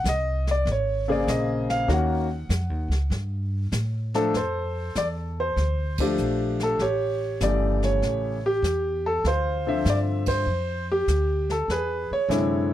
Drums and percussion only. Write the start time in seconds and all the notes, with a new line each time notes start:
0.05 snare, hi-hat pedal
0.47 snare
0.67 brush sweep, snare
1.28 snare, hi-hat pedal
1.70 snare
1.89 brush sweep, snare
2.50 snare, hi-hat pedal
2.91 snare
3.11 brush sweep, snare
3.72 snare, hi-hat pedal
4.14 snare
4.34 brush sweep, snare
4.95 snare, hi-hat pedal
5.57 brush sweep, snare
5.98 kick, ride
6.18 hi-hat pedal
6.60 snare
6.79 brush sweep, snare
7.40 snare, hi-hat pedal
7.82 snare
8.02 brush sweep, snare
8.64 snare, hi-hat pedal
9.25 brush sweep, snare
9.85 snare, hi-hat pedal
10.26 kick, ride
10.47 brush sweep
11.08 snare, hi-hat pedal
11.50 snare
11.70 brush sweep, snare
12.30 snare, hi-hat pedal